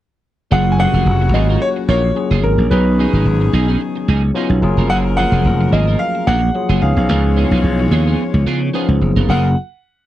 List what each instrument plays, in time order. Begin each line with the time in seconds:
0.51 slap bass F#1, horn section C#3 A#3 F#4, tine electric piano F#3 A#3 C#4 F4 G#4, clean electric guitar A#3 F4 G#4, grand piano F#5
0.66 muted clean electric guitar stroke
0.72 grand piano G#5
0.78 tine electric piano F#3 A#3 C#4 F#4 G4, clean electric guitar A#3 F4 G#4, grand piano F#5
0.86 tine electric piano G#4
0.93 slap bass F1, clean electric guitar A#3 F4 G#4
1.06 slap bass F1, muted clean electric guitar stroke
1.21 muted clean electric guitar stroke
1.34 slap bass G#1, clean electric guitar A#3 F4 G#4, grand piano D#5
1.49 clean electric guitar A#3 F4 A#4
1.62 grand piano C#5, muted clean electric guitar stroke
1.76 muted clean electric guitar stroke
1.88 slap bass A#1, clean electric guitar A#3 F4 A#4, grand piano C#5
2.04 muted clean electric guitar stroke
2.15 tine electric piano F#3 A#3 C#4 F4 G#4, muted clean electric guitar stroke
2.31 slap bass F#1, clean electric guitar A#3 F4 G#4
2.44 slap bass G#1, grand piano A#4, muted clean electric guitar stroke
2.58 slap bass A#1, muted clean electric guitar stroke
2.70 slap bass B1, horn section D#3 C#4 G#4, tine electric piano F#3 B3 C#4 D#4 G#4, clean electric guitar C#4 D#4 A#4, grand piano B4
2.87 muted clean electric guitar stroke
2.98 tine electric piano F#3 B3 C#4 D#4 G#4, clean electric guitar C#4 D#4 G#4
3.13 slap bass G#1, clean electric guitar C#4 D#4 G#4
3.25 slap bass G#1, muted clean electric guitar stroke
3.41 muted clean electric guitar stroke
3.53 slap bass B1, clean electric guitar C#4 D#4 G#4
3.68 clean electric guitar C#4 D#4 G#4
3.81 muted clean electric guitar stroke
3.96 muted clean electric guitar stroke
4.08 slap bass C#2, clean electric guitar C#4 D#4 G#4
4.23 muted clean electric guitar stroke
4.34 tine electric piano F#3 B3 C#4 D#4 F4, clean electric guitar C#4 D#4 G#4
4.50 slap bass B1, muted clean electric guitar stroke
4.62 slap bass F#1, horn section F3 C#4 A#4, tine electric piano F#3 A3 C#4 F4 G#4, muted clean electric guitar stroke
4.69 tine electric piano A#3
4.77 slap bass F1, clean electric guitar A#3 F4 A#4
4.90 slap bass F#1, clean electric guitar A#3 F4 G#4, grand piano F#5
5.06 muted clean electric guitar stroke
5.17 tine electric piano F3 F#3 A3 C#4 G#4, clean electric guitar A#3 F4 G#4, grand piano F#5
5.23 tine electric piano A#3
5.32 slap bass F1, clean electric guitar A#3 F4 G#4
5.44 slap bass F1, muted clean electric guitar stroke
5.61 muted clean electric guitar stroke
5.72 slap bass G#1, clean electric guitar A#3 F4 G#4, grand piano D#5
5.87 clean electric guitar A#3 F4 A#4
5.99 grand piano F5, muted clean electric guitar stroke
6.15 muted clean electric guitar stroke
6.27 slap bass A#1, clean electric guitar A#3 F4 A#4, grand piano F#5
6.42 muted clean electric guitar stroke
6.54 tine electric piano F#3 A#3 C#4 F4 G#4, muted clean electric guitar stroke
6.69 slap bass F#1, clean electric guitar A#3 F4 G#4
6.81 slap bass C#2, tine electric piano F3 B3 C#4 D#4 G#4, horn section G#3 F4 C#5, grand piano F5, muted clean electric guitar stroke
6.97 slap bass B1, grand piano F5, muted clean electric guitar stroke
7.09 slap bass C#2, clean electric guitar B3 F4 A#4
7.24 muted clean electric guitar stroke
7.36 tine electric piano F3 B3 C#4 D#4 E4, clean electric guitar B3 F4 G#4
7.44 tine electric piano F4
7.51 slap bass B1, clean electric guitar B3 F4 G#4
7.64 slap bass B1, muted clean electric guitar stroke
7.80 muted clean electric guitar stroke
7.91 slap bass D#2, clean electric guitar B3 F4 G#4
8.07 clean electric guitar B3 F4 G#4
8.34 slap bass C#2, muted clean electric guitar stroke
8.46 slap bass C#3, clean electric guitar B3 F4 G#4
8.62 muted clean electric guitar stroke
8.73 tine electric piano F3 B3 C#4 D#4 G#4, clean electric guitar B3 F4 G#4
8.88 slap bass C#2, muted clean electric guitar stroke
9.01 slap bass F#1, muted clean electric guitar stroke
9.16 slap bass F1, clean electric guitar B3 F4 A#4
9.28 slap bass F#1, horn section F3 C#4 A#4, tine electric piano F#3 A#3 C#4 F4 G#4, clean electric guitar A#3 F4 G#4, grand piano F#5